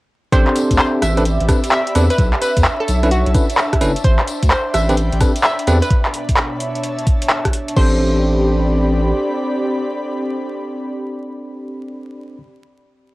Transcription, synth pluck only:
0.32 0.68 C5 loud
0.79 0.97 C5 loud
1.02 1.27 E5 medium
1.72 1.97 E5 medium
2.10 2.34 B4 loud
2.42 2.66 B4 medium
2.80 3.04 A4 medium
3.11 3.47 F#4 loud
4.04 4.40 C5 loud
4.51 4.69 C5 medium
4.74 4.99 E5 loud
5.44 5.69 E5 medium
5.82 5.90 B4 medium
7.76 12.37 C5 loud

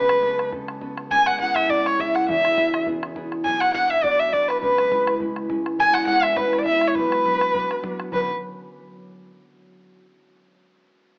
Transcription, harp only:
0.00 1.10 C#2 medium
0.00 1.09 C#3 medium
0.00 1.47 A3 soft
0.00 0.24 B3 medium
0.00 2.08 F#4 medium
0.24 0.52 B3 soft
0.24 0.53 C#4 medium
0.24 0.54 A4 medium
0.53 0.81 B3 soft
0.53 0.81 C#4 soft
0.53 0.82 A4 medium
0.81 2.57 B3 medium
0.81 1.39 C#4 soft
0.81 1.47 A4 medium
1.10 2.33 C#2 medium
1.10 2.33 C#3 medium
1.40 1.68 C#4 medium
1.40 1.69 E4 soft
1.40 1.69 G#4 medium
1.69 1.97 C#4 soft
1.69 1.98 E4 soft
1.69 1.98 G#4 soft
1.98 3.80 C#4 medium
1.98 2.57 E4 medium
1.98 2.57 G#4 medium
2.28 3.50 E1 medium
2.28 3.50 E2 medium
2.57 2.86 B3 soft
2.57 2.87 E4 soft
2.57 2.87 G#4 medium
2.87 3.15 B3 soft
2.87 3.16 E4 soft
2.87 3.17 G#4 medium
3.16 3.73 B3 medium
3.16 4.91 E4 medium
3.16 5.44 G#4 medium
3.45 4.67 B1 medium
3.45 4.67 B2 medium
3.73 4.03 B3 soft
3.73 4.03 D4 soft
3.73 4.04 F#4 soft
4.04 4.32 B3 soft
4.04 4.32 D4 soft
4.04 4.33 F#4 medium
4.32 6.08 B3 medium
4.32 4.67 D4 soft
4.32 6.77 F#4 medium
4.61 5.84 C#2 medium
4.61 5.84 C#3 medium
4.91 5.19 G#3 medium
4.91 5.20 C#4 soft
4.91 5.21 E4 soft
5.20 5.49 G#3 soft
5.20 5.49 C#4 soft
5.20 5.50 E4 medium
5.50 5.84 G#3 medium
5.50 7.32 C#4 medium
5.50 6.08 E4 medium
5.79 7.01 E1 medium
5.79 7.01 E2 medium
6.08 6.37 G#3 soft
6.08 6.38 B3 soft
6.08 6.39 E4 medium
6.38 6.65 G#3 soft
6.38 6.66 B3 soft
6.38 6.67 E4 medium
6.66 7.01 G#3 soft
6.66 7.26 B3 soft
6.66 9.28 E4 medium
6.96 8.11 B1 medium
6.96 8.18 B2 medium
7.25 7.53 F#3 soft
7.25 7.54 B3 soft
7.25 7.54 D4 soft
7.54 7.82 F#3 soft
7.54 7.83 B3 soft
7.54 7.83 D4 medium
7.83 8.12 F#3 medium
7.83 8.12 B3 soft
7.83 8.12 D4 medium
8.12 8.27 B1 medium
8.12 8.27 F#2 medium
8.12 8.28 D3 medium
8.12 8.28 F#3 soft
8.12 8.28 B3 soft
8.12 8.28 F#4 medium

